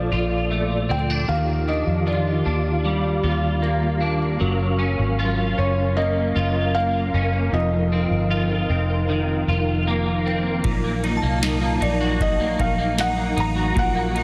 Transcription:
Already playing: A#2 F3 D4 F4 A4 D5
0.12 A#1 F4
0.51 A3
0.89 D2 C4 G5
1.10 D4
1.28 D#2 D#3 F4 G4 F5
1.68 D4 D#5
1.87 F2
2.07 F4 D5
2.45 D#2 D4
2.85 G3
3.23 D#2 F4
3.62 A#3
4.01 D4
4.40 F#1 F#3 C#4 A#4
4.79 C#4
4.99 G#1
5.19 F4
5.58 F#1 C#4 C#5
5.97 A#3 D#5
6.36 F#1 F4
6.75 A#3 F5
7.14 F#1 C#4
7.52 F1 F2 F3 D#4 D#5
7.92 C4
8.11 G1
8.30 F4
8.70 F1 C4
9.09 D#3
9.48 F1 F4
9.87 A#3
10.26 C4
10.64 A#1 A#2 F#3 D#4, kick, ride
10.84 A#3
11.03 D#4, ride
11.17 A5
11.22 C2 A#3
11.42 D#4, snare, ride, tambourine
11.61 A#3
11.81 A#1 D#4 D5, ride
12.00 F#4
12.20 D#5, kick, ride
12.40 A#3
12.59 A#1 D#4 F5, kick, ride
12.78 A#3
12.98 D#4 F#5, snare, ride, tambourine
13.10 A#5
13.17 A#3
13.37 A1 D#4 A#5, ride
13.56 F#4
13.74 A#1 A#2 F#4, kick, ride
13.79 F#5
13.95 A#3
14.15 D#4, ride

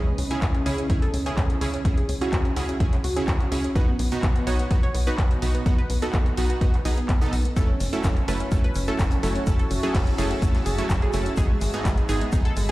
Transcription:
Already playing: C#2
0.07 C#4
0.18 C#2 C#4, open hi-hat
0.31 C#3 C#4 E4 G#4, closed hi-hat
0.42 C#2 C#4, kick, clap, closed hi-hat
0.55 C#4, closed hi-hat
0.66 C#2 C#3 C#4 E4 G#4, open hi-hat
0.78 C#4, closed hi-hat
0.90 C#2 C#3 C#4 E4 G#4, kick, closed hi-hat
1.02 A4, closed hi-hat
1.14 C#2 C#4, open hi-hat
1.26 C#3 C#4 E4 G#4, closed hi-hat
1.37 C#2 C#4, kick, clap, closed hi-hat
1.50 C#4, closed hi-hat
1.61 C#2 C#3 C#4 E4 G#4, open hi-hat
1.74 C#4, closed hi-hat
1.85 C#2 C#3 C#4 E4 G#4, kick, closed hi-hat
1.97 G#4, closed hi-hat
2.09 C#2 C#4, open hi-hat
2.21 C#3 C#4 E4 F#4 G#4, closed hi-hat
2.32 C#2 C#4, kick, clap, closed hi-hat
2.45 C#4, closed hi-hat
2.56 C#2 C#3 C#4 E4 F#4 G#4, open hi-hat
2.69 C#4, closed hi-hat
2.80 C#2 C#3 C#4 E4 G#4, kick, closed hi-hat
2.93 C#4, clap, closed hi-hat
3.04 C#2 F#4, open hi-hat
3.17 C#3 C#4 E4 G#4, closed hi-hat
3.28 C#2 C#4, kick, clap, closed hi-hat
3.40 F#4, closed hi-hat
3.52 C#2 C#4 E4 G#4, open hi-hat
3.64 C#4, closed hi-hat
3.75 B1 B2 B3 D#4 F#4 B4, kick, closed hi-hat
3.88 B3
3.99 B1 B3, open hi-hat
4.12 B2 B3 D#4 F#4, closed hi-hat
4.23 B1 B3, kick, clap, closed hi-hat
4.35 B3, closed hi-hat
4.47 B1 B2 B3 D#4 F#4 C#5, open hi-hat
4.59 B3, closed hi-hat
4.71 B1 B2 B3 D#4 F#4, kick, closed hi-hat
4.83 C#5, closed hi-hat
4.95 B1 B3, open hi-hat
5.07 B2 B3 D#4 F#4 B4, closed hi-hat
5.18 B1 B3, kick, clap, closed hi-hat
5.31 B3, closed hi-hat
5.42 B1 B2 B3 D#4 F#4, open hi-hat
5.55 B3, closed hi-hat
5.66 B1 B2 B3 D#4 F#4, kick, closed hi-hat
5.78 B4, closed hi-hat
5.90 B1 B3, open hi-hat
6.02 B2 B3 D#4 F#4 A4, closed hi-hat
6.13 B1 B3, kick, clap, closed hi-hat
6.26 B3, closed hi-hat
6.37 B1 B2 B3 D#4 F#4, open hi-hat
6.50 B3, closed hi-hat
6.61 B1 B2 B3 D#4 F#4, kick, closed hi-hat
6.74 B3, clap, closed hi-hat
6.85 B1 B2 B3 D#4 G#4, open hi-hat
6.98 B3, closed hi-hat
7.09 B1 B3, kick, clap, closed hi-hat
7.21 B2 B3 D#4 A4, closed hi-hat
7.33 B1 B3, open hi-hat
7.45 B3, closed hi-hat
7.56 F#1 F#3 A3 C#4 E4 F#4 A4 C#5 E5 A5, kick, closed hi-hat, shaker
7.69 C#4
7.80 F#1 C#4, snare, open hi-hat, shaker
7.93 F#3 A3 C#4 E4 A4, closed hi-hat
8.04 F#1 C#4, kick, snare, clap, closed hi-hat, shaker
8.17 C#4, closed hi-hat
8.28 F#1 F#3 A3 C#4 E4 A4 B4, open hi-hat, shaker
8.40 C#4, closed hi-hat
8.52 F#1 F#3 A3 C#4 E4 A4, kick, closed hi-hat, shaker
8.64 B4, closed hi-hat
8.75 F#1 C#4, open hi-hat, shaker
8.88 F#3 A3 C#4 E4 A4, closed hi-hat
8.99 F#1 C#4, kick, snare, clap, closed hi-hat, shaker
9.11 C#4, closed hi-hat
9.23 F#1 F#3 A3 C#4 E4 A4, open hi-hat, shaker
9.36 C#4, closed hi-hat
9.47 F#1 F#3 A3 C#4 E4 A4, kick, closed hi-hat, shaker
9.59 A4, closed hi-hat
9.71 F#1 C#4, open hi-hat, shaker
9.83 F#3 A3 C#4 E4 G#4 A4, closed hi-hat
9.94 F#1 C#4, kick, snare, clap, closed hi-hat, open hi-hat
10.07 C#4, closed hi-hat
10.18 F#1 F#3 A3 C#4 E4 G#4 A4, snare, open hi-hat, shaker
10.31 C#4, closed hi-hat
10.42 F#1 F#3 A3 C#4 E4 A4, kick, closed hi-hat, shaker
10.54 C#4, snare, clap, closed hi-hat
10.66 F#1 G#4, open hi-hat, shaker
10.78 F#3 A3 C#4 E4 A4, closed hi-hat
10.90 F#1 C#4, kick, snare, clap, closed hi-hat, shaker
11.02 G#4, closed hi-hat
11.13 F#1 F#3 A3 C#4 E4 A4, open hi-hat, shaker
11.26 C#4, closed hi-hat
11.37 G#1 G#2 B3 D#4 G#4 B4 D#5 B5, kick, closed hi-hat, shaker
11.50 G#3
11.61 G#1 G#3, snare, open hi-hat, shaker
11.74 G#2 B3 D#4 G#4, closed hi-hat
11.85 G#1 G#3, kick, snare, clap, closed hi-hat, shaker
11.97 G#3, closed hi-hat
12.09 G#1 G#2 B3 D#4 G#4, open hi-hat, shaker
12.21 G#3, closed hi-hat
12.32 G#1 G#2 G#3 B3 D#4 G#4, kick, closed hi-hat, shaker
12.45 A4, closed hi-hat
12.56 G#1 G#3, open hi-hat, shaker

